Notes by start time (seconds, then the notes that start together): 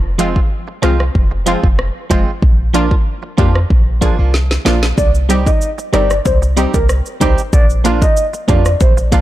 Already playing: F1
0.18 F3 G#3 C4 F4, closed hi-hat
0.36 kick
0.68 muted clean electric guitar stroke
0.82 C2 F3 G#3 C4 F4, cross-stick, closed hi-hat
1.00 cross-stick
1.15 F1, kick
1.31 muted clean electric guitar stroke
1.46 F3 G#3 C4 F4, closed hi-hat
1.64 F1, kick
1.79 cross-stick
2.10 F1 F3 G#3 C4 F4, kick, closed hi-hat
2.42 A#1, kick
2.73 F3 A#3 D4 F4, closed hi-hat
2.91 kick
3.23 muted clean electric guitar stroke
3.37 F2 F3 A#3 D4 F4 G4, kick, closed hi-hat
3.55 cross-stick
3.70 A#1, kick
4.01 F3 A#3 D4 F4 G#4, kick, closed hi-hat
4.18 C2 F3 A#3 D4 F4
4.34 snare
4.51 snare
4.65 A#1 F3 A#3 D4 F4, snare, closed hi-hat
4.83 snare
4.98 C2 D5, kick, high bongo, shaker
5.15 shaker
5.29 G3 C4 D#4 G4, closed hi-hat, high bongo, shaker
5.46 D#5, kick, high bongo, shaker
5.62 shaker
5.78 muted clean electric guitar stroke, shaker
5.93 G1 G3 C4 D#4 G4 A#4 D5, cross-stick, closed hi-hat, shaker
6.10 cross-stick, shaker
6.25 C2 C5, kick, high bongo, shaker
6.42 muted clean electric guitar stroke, shaker
6.56 G3 C4 D#4 G4, closed hi-hat, high bongo, shaker
6.74 C2 A#4, kick, high bongo, shaker
6.89 cross-stick, shaker
7.06 shaker
7.20 C2 G3 C4 D#4 G4 C5, kick, closed hi-hat, low bongo, shaker
7.38 shaker
7.53 A#1 D5, kick, high bongo, shaker
7.70 shaker
7.84 F3 A#3 D4 F4, closed hi-hat, high bongo, shaker
8.02 D#5, kick, high bongo, shaker
8.17 shaker
8.33 muted clean electric guitar stroke, shaker
8.48 F2 F3 A#3 D4 F4 G4 D5, kick, closed hi-hat, shaker
8.65 cross-stick, shaker
8.80 A#1 C5, kick, high bongo, shaker
8.97 muted clean electric guitar stroke, shaker
9.11 F3 A#3 D4 F4, kick, closed hi-hat, high bongo, shaker